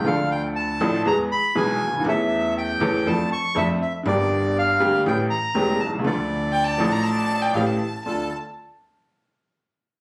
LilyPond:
<<
  \new Staff \with { instrumentName = "Violin" } { \time 4/4 \key d \minor \tempo 4 = 120 r1 | r1 | r1 | r4 g''16 a''8 bes''16 a''8. g''16 f''16 a''8. |
a''8 r2. r8 | }
  \new Staff \with { instrumentName = "Bandoneon" } { \time 4/4 \key d \minor f''8 g''8 a''4 bes''8 b''8 gis''4 | e''4 g''4 a''8 cis'''8 e''8 e''8 | d''4 f''4 g''8 bes''4 a''8 | d''2. r4 |
a'8 r2. r8 | }
  \new Staff \with { instrumentName = "Upright piano" } { \clef bass \time 4/4 \key d \minor <d, d f a d' a'>4. <a,, a, f a d' a'>8 <e, e gis b gis'>8 r8 <b,, b, e gis b gis'>8 r32 cis,32 d,32 ees,32 | <e, e a cis' a'>4. <e, e a cis' a'>8 <f, f a d' a'>8 r8 <f, f a d' a'>8 r8 | <g,, g, d g bes g'>4. <d, d g bes g'>8 <a,, a, e a cis' g'>8 r8 <e,, e, e a cis' g'>8 r32 b,,32 c,32 cis,32 | <d, d f a d' a'>4. <a,, a, f a d' a'>4. <a,, a, e a cis' g'>8 r8 |
<d, a d' f'>8 r2. r8 | }
  \new Staff \with { instrumentName = "Upright bass" } { \clef bass \time 4/4 \key d \minor d,4~ d,16. r32 a,,16. r32 e,16. r8 r32 b,,16. r16 cis,32 d,32 ees,32 | e,4~ e,16. r32 e,16. r32 f,16. r8 r32 f,16. r8 r32 | g,,4~ g,,16. r32 d,16. r32 a,,16. r8 r32 e,,16. r16 b,,32 c,32 cis,32 | d,4~ d,16. r32 a,,4~ a,,16. r32 a,,16. r8 r32 |
d,8 r2. r8 | }
>>